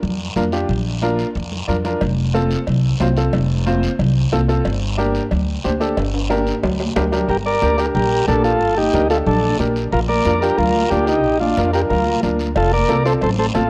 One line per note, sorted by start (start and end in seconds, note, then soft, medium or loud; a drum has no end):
0.03 0.29 F2 medium
0.03 high conga soft
0.03 low conga medium
0.03 long guiro medium
0.36 0.63 F2 medium
0.36 0.42 D4 medium
0.36 0.42 F4 medium
0.36 0.42 A#4 medium
0.36 high conga medium
0.36 low conga medium
0.36 short guiro medium
0.52 0.70 D4 medium
0.52 0.70 F4 medium
0.52 0.70 G4 medium
0.52 short guiro medium
0.69 1.22 A#1 medium
0.69 high conga soft
0.69 low conga medium
0.69 long guiro medium
1.02 1.25 D4 medium
1.02 1.25 F4 medium
1.02 1.26 A#4 medium
1.02 high conga medium
1.02 short guiro medium
1.19 short guiro medium
1.35 1.62 F2 medium
1.35 long guiro medium
1.52 low conga medium
1.68 1.95 F2 medium
1.68 1.74 D4 medium
1.68 1.74 F4 medium
1.68 1.74 A#4 medium
1.68 low conga medium
1.68 short guiro medium
1.84 2.01 D4 medium
1.84 2.01 F4 medium
1.84 2.02 A#4 medium
1.84 low conga loud
1.84 short guiro medium
2.01 2.54 F1 medium
2.01 cowbell loud
2.01 high conga soft
2.01 low conga medium
2.01 long guiro medium
2.34 2.57 C4 medium
2.34 2.57 F4 medium
2.34 2.58 A4 medium
2.34 high conga medium
2.34 short guiro medium
2.51 short guiro medium
2.67 2.94 C2 medium
2.67 cowbell medium
2.67 high conga soft
2.67 low conga medium
2.67 long guiro medium
3.00 3.27 C2 medium
3.00 3.06 C4 medium
3.00 3.06 F4 medium
3.00 3.06 C5 medium
3.00 high conga medium
3.00 low conga medium
3.00 low timbale medium
3.00 short guiro medium
3.17 3.34 C4 medium
3.17 3.34 F4 medium
3.17 3.34 A4 medium
3.17 short guiro medium
3.33 3.86 F1 medium
3.33 cowbell loud
3.33 high conga soft
3.33 low conga medium
3.33 long guiro medium
3.66 3.89 C4 medium
3.66 3.90 F4 medium
3.66 3.90 C5 medium
3.66 high conga medium
3.66 short guiro medium
3.83 short guiro medium
3.99 4.26 C2 medium
3.99 cowbell medium
3.99 high conga soft
3.99 low conga medium
3.99 long guiro medium
4.32 4.59 C2 medium
4.32 4.38 C4 medium
4.32 4.38 F4 medium
4.32 4.38 A4 medium
4.32 high conga medium
4.32 short guiro medium
4.48 4.65 C4 medium
4.48 4.65 F4 medium
4.48 4.65 A4 medium
4.48 short guiro medium
4.65 5.18 G1 loud
4.65 cowbell loud
4.65 high conga soft
4.65 long guiro medium
4.98 5.21 D4 medium
4.98 5.21 G4 medium
4.98 5.21 A#4 medium
4.98 high conga medium
4.98 short guiro medium
5.15 short guiro medium
5.31 5.58 D2 medium
5.31 cowbell medium
5.31 high conga soft
5.31 low conga medium
5.31 long guiro medium
5.64 5.91 D2 medium
5.64 5.70 D4 medium
5.64 5.70 G4 medium
5.64 5.70 C5 medium
5.64 high conga medium
5.64 short guiro medium
5.80 5.98 D4 medium
5.80 5.98 G4 medium
5.80 5.98 A4 medium
5.80 short guiro medium
5.97 6.50 G1 medium
5.97 cowbell loud
5.97 high timbale medium
5.97 long guiro medium
6.14 high timbale medium
6.29 6.53 D4 medium
6.29 6.53 G4 medium
6.29 6.53 A#4 loud
6.29 high conga medium
6.29 high timbale medium
6.29 short guiro medium
6.47 short guiro medium
6.63 6.90 D2 medium
6.63 cowbell medium
6.63 high conga soft
6.63 low conga medium
6.63 low timbale loud
6.63 long guiro medium
6.80 high conga medium
6.80 low timbale medium
6.96 7.22 D2 medium
6.96 7.02 D4 medium
6.96 7.02 G4 medium
6.96 7.02 A#4 medium
6.96 low conga medium
6.96 low timbale loud
6.96 short guiro medium
7.12 7.29 D4 medium
7.12 7.29 G4 medium
7.12 7.29 A#4 medium
7.12 low conga medium
7.12 low timbale medium
7.12 short guiro medium
7.28 7.55 G1 medium
7.28 7.37 G4 medium
7.28 7.37 A#4 medium
7.28 high conga soft
7.28 long guiro medium
7.46 7.77 A#4 medium
7.46 7.80 D5 loud
7.62 7.88 D2 medium
7.62 7.68 D4 medium
7.62 7.68 G4 medium
7.62 7.68 A#4 medium
7.62 high conga loud
7.62 short guiro medium
7.78 7.95 D4 medium
7.78 7.96 G4 medium
7.78 7.86 G4 medium
7.78 7.86 A#4 medium
7.78 7.96 A#4 medium
7.78 short guiro medium
7.95 8.21 A#1 medium
7.95 8.26 G4 medium
7.95 8.26 A#4 medium
7.95 high conga soft
7.95 low conga medium
7.95 long guiro medium
8.28 8.61 A#1 medium
8.28 8.51 D4 medium
8.28 8.43 D4 medium
8.28 8.51 G4 medium
8.28 8.43 A4 medium
8.28 8.51 A#4 medium
8.28 high conga medium
8.28 short guiro medium
8.44 8.75 F4 medium
8.44 8.78 A4 medium
8.44 short guiro medium
8.61 8.87 G1 medium
8.61 high conga soft
8.61 long guiro medium
8.77 9.08 D#4 medium
8.77 9.08 G4 medium
8.77 high conga medium
8.93 9.20 D2 medium
8.93 8.99 D4 medium
8.93 9.00 G4 medium
8.93 9.00 A#4 medium
8.93 high conga medium
8.93 short guiro medium
9.10 9.27 D4 medium
9.10 9.18 F4 medium
9.10 9.28 G4 medium
9.10 9.18 A4 medium
9.10 9.28 A4 medium
9.10 short guiro medium
9.27 9.53 A#1 medium
9.27 9.58 D4 medium
9.27 9.57 A4 medium
9.27 high conga soft
9.27 low conga medium
9.27 long guiro medium
9.43 high conga medium
9.59 9.86 A#1 medium
9.59 9.82 D4 medium
9.59 9.83 G4 medium
9.59 9.83 A#4 medium
9.59 high conga medium
9.59 short guiro medium
9.76 short guiro medium
9.92 10.19 A#1 loud
9.92 10.00 F4 medium
9.92 10.00 A#4 loud
9.92 high conga soft
9.92 long guiro medium
10.08 10.40 A#4 medium
10.08 10.43 D5 loud
10.08 high conga medium
10.25 10.52 F2 medium
10.25 10.31 D4 medium
10.25 10.31 F4 medium
10.25 10.32 A#4 medium
10.25 high conga medium
10.25 short guiro medium
10.41 10.59 D4 medium
10.41 10.59 F4 medium
10.41 10.58 G4 medium
10.41 10.56 A#4 medium
10.41 10.60 A#4 medium
10.41 short guiro medium
10.57 10.84 D2 medium
10.57 10.89 F4 medium
10.57 10.92 A#4 loud
10.57 high conga soft
10.57 low conga medium
10.57 long guiro medium
10.75 high conga medium
10.90 11.24 D2 medium
10.90 11.14 D4 medium
10.90 11.07 D4 medium
10.90 11.14 F4 medium
10.90 11.05 G4 medium
10.90 11.15 A#4 medium
10.90 high conga medium
10.90 short guiro medium
11.06 11.39 D#4 medium
11.06 11.38 G4 medium
11.06 short guiro medium
11.24 11.51 A#1 loud
11.24 high conga soft
11.24 long guiro medium
11.40 11.72 D4 medium
11.40 11.71 F4 medium
11.40 high conga medium
11.57 11.84 F2 medium
11.57 11.63 D4 medium
11.57 11.63 F4 medium
11.57 11.63 A#4 medium
11.57 high conga loud
11.57 short guiro medium
11.73 11.91 D4 medium
11.73 11.91 F4 medium
11.73 11.82 G4 medium
11.73 11.81 A#4 medium
11.73 11.91 A#4 medium
11.73 short guiro medium
11.90 12.17 D2 medium
11.90 12.21 F4 medium
11.90 12.21 A#4 medium
11.90 high conga soft
11.90 low conga medium
11.90 long guiro medium
12.07 high conga medium
12.23 12.57 D2 medium
12.23 12.46 D4 medium
12.23 12.46 F4 medium
12.23 12.46 A#4 medium
12.23 high conga medium
12.23 low conga medium
12.23 short guiro medium
12.39 short guiro medium
12.56 12.82 F1 medium
12.56 12.72 F4 medium
12.56 12.72 A4 medium
12.56 cowbell loud
12.56 long guiro medium
12.73 13.03 A#4 medium
12.73 13.07 D5 loud
12.73 high conga medium
12.88 13.15 C2 medium
12.88 12.94 C4 medium
12.88 12.94 F4 medium
12.88 12.95 A4 medium
12.88 cowbell medium
12.88 high conga medium
12.88 short guiro medium
13.05 13.22 C4 medium
13.05 13.23 F4 medium
13.05 13.23 A4 medium
13.05 13.14 A4 medium
13.05 13.13 C5 medium
13.05 short guiro medium
13.21 13.48 A1 medium
13.21 13.30 A4 medium
13.21 13.30 C5 medium
13.21 cowbell medium
13.21 high conga soft
13.21 low conga medium
13.21 long guiro medium
13.38 13.46 A4 medium
13.38 13.46 C5 medium
13.38 high conga medium
13.54 13.70 A1 medium
13.54 13.70 C4 medium
13.54 13.70 F4 medium
13.54 13.70 A4 medium
13.54 cowbell medium
13.54 high conga medium
13.54 short guiro medium